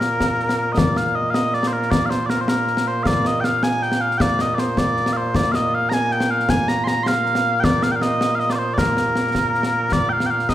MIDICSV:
0, 0, Header, 1, 3, 480
1, 0, Start_track
1, 0, Key_signature, -2, "major"
1, 0, Tempo, 380952
1, 978, Time_signature, 6, 3, 24, 8
1, 13285, End_track
2, 0, Start_track
2, 0, Title_t, "Bagpipes"
2, 0, Program_c, 0, 109
2, 0, Note_on_c, 0, 46, 89
2, 0, Note_on_c, 0, 58, 89
2, 0, Note_on_c, 0, 70, 90
2, 912, Note_off_c, 0, 70, 0
2, 912, Note_on_c, 0, 75, 58
2, 982, Note_off_c, 0, 75, 0
2, 982, Note_on_c, 0, 74, 93
2, 1222, Note_off_c, 0, 74, 0
2, 1222, Note_on_c, 0, 77, 82
2, 1453, Note_off_c, 0, 77, 0
2, 1453, Note_on_c, 0, 75, 79
2, 1644, Note_off_c, 0, 75, 0
2, 1644, Note_on_c, 0, 77, 96
2, 1696, Note_off_c, 0, 77, 0
2, 1696, Note_on_c, 0, 75, 96
2, 1938, Note_off_c, 0, 75, 0
2, 1938, Note_on_c, 0, 74, 97
2, 2113, Note_off_c, 0, 74, 0
2, 2113, Note_on_c, 0, 72, 65
2, 2174, Note_off_c, 0, 72, 0
2, 2174, Note_on_c, 0, 70, 76
2, 2404, Note_off_c, 0, 70, 0
2, 2404, Note_on_c, 0, 74, 102
2, 2592, Note_off_c, 0, 74, 0
2, 2592, Note_on_c, 0, 77, 76
2, 2646, Note_off_c, 0, 77, 0
2, 2646, Note_on_c, 0, 72, 76
2, 2850, Note_off_c, 0, 72, 0
2, 2850, Note_on_c, 0, 74, 83
2, 2894, Note_off_c, 0, 74, 0
2, 2895, Note_on_c, 0, 70, 83
2, 3034, Note_off_c, 0, 70, 0
2, 3034, Note_on_c, 0, 72, 69
2, 3132, Note_off_c, 0, 72, 0
2, 3132, Note_on_c, 0, 70, 89
2, 3620, Note_off_c, 0, 70, 0
2, 3620, Note_on_c, 0, 72, 82
2, 3823, Note_off_c, 0, 72, 0
2, 3823, Note_on_c, 0, 77, 98
2, 3865, Note_off_c, 0, 77, 0
2, 3865, Note_on_c, 0, 74, 98
2, 4114, Note_off_c, 0, 74, 0
2, 4114, Note_on_c, 0, 75, 85
2, 4289, Note_off_c, 0, 75, 0
2, 4289, Note_on_c, 0, 79, 95
2, 4338, Note_off_c, 0, 79, 0
2, 4338, Note_on_c, 0, 77, 95
2, 4577, Note_off_c, 0, 77, 0
2, 4577, Note_on_c, 0, 80, 100
2, 4821, Note_off_c, 0, 80, 0
2, 4821, Note_on_c, 0, 79, 108
2, 5053, Note_off_c, 0, 79, 0
2, 5053, Note_on_c, 0, 77, 94
2, 5263, Note_off_c, 0, 77, 0
2, 5263, Note_on_c, 0, 79, 107
2, 5306, Note_off_c, 0, 79, 0
2, 5306, Note_on_c, 0, 74, 107
2, 5554, Note_off_c, 0, 74, 0
2, 5554, Note_on_c, 0, 75, 90
2, 5725, Note_off_c, 0, 75, 0
2, 5725, Note_on_c, 0, 74, 65
2, 5793, Note_off_c, 0, 74, 0
2, 5793, Note_on_c, 0, 72, 80
2, 6034, Note_off_c, 0, 72, 0
2, 6034, Note_on_c, 0, 74, 100
2, 6462, Note_off_c, 0, 74, 0
2, 6462, Note_on_c, 0, 77, 81
2, 6514, Note_off_c, 0, 77, 0
2, 6515, Note_on_c, 0, 72, 81
2, 6754, Note_off_c, 0, 72, 0
2, 6754, Note_on_c, 0, 74, 105
2, 6952, Note_off_c, 0, 74, 0
2, 6952, Note_on_c, 0, 77, 90
2, 6996, Note_off_c, 0, 77, 0
2, 6996, Note_on_c, 0, 75, 90
2, 7240, Note_off_c, 0, 75, 0
2, 7240, Note_on_c, 0, 77, 103
2, 7426, Note_off_c, 0, 77, 0
2, 7426, Note_on_c, 0, 82, 106
2, 7479, Note_off_c, 0, 82, 0
2, 7479, Note_on_c, 0, 80, 106
2, 7711, Note_off_c, 0, 80, 0
2, 7711, Note_on_c, 0, 79, 104
2, 7944, Note_off_c, 0, 79, 0
2, 7944, Note_on_c, 0, 77, 97
2, 8187, Note_off_c, 0, 77, 0
2, 8187, Note_on_c, 0, 80, 118
2, 8422, Note_off_c, 0, 80, 0
2, 8422, Note_on_c, 0, 82, 98
2, 8618, Note_off_c, 0, 82, 0
2, 8618, Note_on_c, 0, 84, 108
2, 8666, Note_off_c, 0, 84, 0
2, 8666, Note_on_c, 0, 82, 108
2, 8861, Note_off_c, 0, 82, 0
2, 8861, Note_on_c, 0, 84, 103
2, 8913, Note_off_c, 0, 84, 0
2, 8913, Note_on_c, 0, 77, 103
2, 9576, Note_off_c, 0, 77, 0
2, 9576, Note_on_c, 0, 79, 107
2, 9627, Note_off_c, 0, 79, 0
2, 9627, Note_on_c, 0, 74, 107
2, 9864, Note_off_c, 0, 74, 0
2, 9864, Note_on_c, 0, 77, 102
2, 9973, Note_off_c, 0, 77, 0
2, 9973, Note_on_c, 0, 79, 75
2, 10026, Note_off_c, 0, 79, 0
2, 10026, Note_on_c, 0, 77, 75
2, 10105, Note_off_c, 0, 77, 0
2, 10105, Note_on_c, 0, 75, 99
2, 10524, Note_off_c, 0, 75, 0
2, 10524, Note_on_c, 0, 77, 98
2, 10580, Note_off_c, 0, 77, 0
2, 10580, Note_on_c, 0, 75, 98
2, 10706, Note_off_c, 0, 75, 0
2, 10706, Note_on_c, 0, 74, 94
2, 10733, Note_off_c, 0, 74, 0
2, 10733, Note_on_c, 0, 72, 84
2, 10777, Note_off_c, 0, 72, 0
2, 10777, Note_on_c, 0, 74, 101
2, 10822, Note_off_c, 0, 74, 0
2, 10822, Note_on_c, 0, 72, 86
2, 11014, Note_off_c, 0, 72, 0
2, 11014, Note_on_c, 0, 74, 97
2, 11066, Note_off_c, 0, 74, 0
2, 11066, Note_on_c, 0, 70, 97
2, 12508, Note_off_c, 0, 70, 0
2, 12508, Note_on_c, 0, 74, 112
2, 12715, Note_off_c, 0, 74, 0
2, 12715, Note_on_c, 0, 79, 95
2, 12758, Note_off_c, 0, 79, 0
2, 12759, Note_on_c, 0, 77, 95
2, 12928, Note_off_c, 0, 77, 0
2, 12928, Note_on_c, 0, 79, 98
2, 12981, Note_off_c, 0, 79, 0
2, 12981, Note_on_c, 0, 77, 98
2, 13223, Note_off_c, 0, 77, 0
2, 13223, Note_on_c, 0, 75, 105
2, 13285, Note_off_c, 0, 46, 0
2, 13285, Note_off_c, 0, 58, 0
2, 13285, Note_off_c, 0, 75, 0
2, 13285, End_track
3, 0, Start_track
3, 0, Title_t, "Drums"
3, 14, Note_on_c, 9, 38, 75
3, 140, Note_off_c, 9, 38, 0
3, 258, Note_on_c, 9, 35, 45
3, 258, Note_on_c, 9, 38, 85
3, 384, Note_off_c, 9, 35, 0
3, 384, Note_off_c, 9, 38, 0
3, 499, Note_on_c, 9, 38, 28
3, 620, Note_off_c, 9, 38, 0
3, 620, Note_on_c, 9, 38, 76
3, 746, Note_off_c, 9, 38, 0
3, 977, Note_on_c, 9, 35, 74
3, 977, Note_on_c, 9, 38, 112
3, 1103, Note_off_c, 9, 35, 0
3, 1103, Note_off_c, 9, 38, 0
3, 1214, Note_on_c, 9, 38, 70
3, 1340, Note_off_c, 9, 38, 0
3, 1693, Note_on_c, 9, 38, 83
3, 1819, Note_off_c, 9, 38, 0
3, 1935, Note_on_c, 9, 38, 28
3, 2054, Note_off_c, 9, 38, 0
3, 2054, Note_on_c, 9, 38, 78
3, 2180, Note_off_c, 9, 38, 0
3, 2297, Note_on_c, 9, 38, 28
3, 2414, Note_off_c, 9, 38, 0
3, 2414, Note_on_c, 9, 35, 63
3, 2414, Note_on_c, 9, 38, 101
3, 2540, Note_off_c, 9, 35, 0
3, 2540, Note_off_c, 9, 38, 0
3, 2655, Note_on_c, 9, 38, 72
3, 2781, Note_off_c, 9, 38, 0
3, 2893, Note_on_c, 9, 38, 76
3, 3019, Note_off_c, 9, 38, 0
3, 3125, Note_on_c, 9, 38, 95
3, 3251, Note_off_c, 9, 38, 0
3, 3369, Note_on_c, 9, 38, 29
3, 3491, Note_off_c, 9, 38, 0
3, 3491, Note_on_c, 9, 38, 79
3, 3617, Note_off_c, 9, 38, 0
3, 3850, Note_on_c, 9, 35, 69
3, 3850, Note_on_c, 9, 38, 107
3, 3976, Note_off_c, 9, 35, 0
3, 3976, Note_off_c, 9, 38, 0
3, 4092, Note_on_c, 9, 38, 75
3, 4218, Note_off_c, 9, 38, 0
3, 4335, Note_on_c, 9, 38, 82
3, 4461, Note_off_c, 9, 38, 0
3, 4572, Note_on_c, 9, 38, 92
3, 4698, Note_off_c, 9, 38, 0
3, 4817, Note_on_c, 9, 38, 34
3, 4935, Note_off_c, 9, 38, 0
3, 4935, Note_on_c, 9, 38, 85
3, 5061, Note_off_c, 9, 38, 0
3, 5179, Note_on_c, 9, 38, 33
3, 5294, Note_off_c, 9, 38, 0
3, 5294, Note_on_c, 9, 35, 70
3, 5294, Note_on_c, 9, 38, 116
3, 5420, Note_off_c, 9, 35, 0
3, 5420, Note_off_c, 9, 38, 0
3, 5531, Note_on_c, 9, 38, 78
3, 5657, Note_off_c, 9, 38, 0
3, 5774, Note_on_c, 9, 38, 79
3, 5900, Note_off_c, 9, 38, 0
3, 6014, Note_on_c, 9, 35, 56
3, 6014, Note_on_c, 9, 38, 85
3, 6140, Note_off_c, 9, 35, 0
3, 6140, Note_off_c, 9, 38, 0
3, 6257, Note_on_c, 9, 38, 32
3, 6379, Note_off_c, 9, 38, 0
3, 6379, Note_on_c, 9, 38, 79
3, 6505, Note_off_c, 9, 38, 0
3, 6735, Note_on_c, 9, 35, 66
3, 6735, Note_on_c, 9, 38, 108
3, 6861, Note_off_c, 9, 35, 0
3, 6861, Note_off_c, 9, 38, 0
3, 6979, Note_on_c, 9, 38, 76
3, 7105, Note_off_c, 9, 38, 0
3, 7454, Note_on_c, 9, 38, 83
3, 7580, Note_off_c, 9, 38, 0
3, 7699, Note_on_c, 9, 38, 33
3, 7817, Note_off_c, 9, 38, 0
3, 7817, Note_on_c, 9, 38, 89
3, 7943, Note_off_c, 9, 38, 0
3, 8059, Note_on_c, 9, 38, 33
3, 8174, Note_off_c, 9, 38, 0
3, 8174, Note_on_c, 9, 35, 70
3, 8174, Note_on_c, 9, 38, 113
3, 8300, Note_off_c, 9, 35, 0
3, 8300, Note_off_c, 9, 38, 0
3, 8419, Note_on_c, 9, 38, 84
3, 8545, Note_off_c, 9, 38, 0
3, 8660, Note_on_c, 9, 38, 80
3, 8786, Note_off_c, 9, 38, 0
3, 8901, Note_on_c, 9, 38, 97
3, 9027, Note_off_c, 9, 38, 0
3, 9142, Note_on_c, 9, 38, 34
3, 9263, Note_off_c, 9, 38, 0
3, 9263, Note_on_c, 9, 38, 85
3, 9389, Note_off_c, 9, 38, 0
3, 9623, Note_on_c, 9, 35, 66
3, 9623, Note_on_c, 9, 38, 112
3, 9749, Note_off_c, 9, 35, 0
3, 9749, Note_off_c, 9, 38, 0
3, 9860, Note_on_c, 9, 38, 79
3, 9986, Note_off_c, 9, 38, 0
3, 10100, Note_on_c, 9, 38, 79
3, 10226, Note_off_c, 9, 38, 0
3, 10344, Note_on_c, 9, 38, 83
3, 10470, Note_off_c, 9, 38, 0
3, 10584, Note_on_c, 9, 38, 27
3, 10706, Note_off_c, 9, 38, 0
3, 10706, Note_on_c, 9, 38, 75
3, 10832, Note_off_c, 9, 38, 0
3, 11060, Note_on_c, 9, 35, 61
3, 11060, Note_on_c, 9, 38, 102
3, 11186, Note_off_c, 9, 35, 0
3, 11186, Note_off_c, 9, 38, 0
3, 11300, Note_on_c, 9, 38, 66
3, 11426, Note_off_c, 9, 38, 0
3, 11535, Note_on_c, 9, 38, 74
3, 11661, Note_off_c, 9, 38, 0
3, 11778, Note_on_c, 9, 35, 48
3, 11778, Note_on_c, 9, 38, 84
3, 11904, Note_off_c, 9, 35, 0
3, 11904, Note_off_c, 9, 38, 0
3, 12025, Note_on_c, 9, 38, 28
3, 12137, Note_off_c, 9, 38, 0
3, 12137, Note_on_c, 9, 38, 81
3, 12263, Note_off_c, 9, 38, 0
3, 12498, Note_on_c, 9, 35, 57
3, 12498, Note_on_c, 9, 38, 91
3, 12624, Note_off_c, 9, 35, 0
3, 12624, Note_off_c, 9, 38, 0
3, 12856, Note_on_c, 9, 38, 69
3, 12982, Note_off_c, 9, 38, 0
3, 13094, Note_on_c, 9, 38, 27
3, 13217, Note_off_c, 9, 38, 0
3, 13217, Note_on_c, 9, 35, 43
3, 13217, Note_on_c, 9, 38, 84
3, 13285, Note_off_c, 9, 35, 0
3, 13285, Note_off_c, 9, 38, 0
3, 13285, End_track
0, 0, End_of_file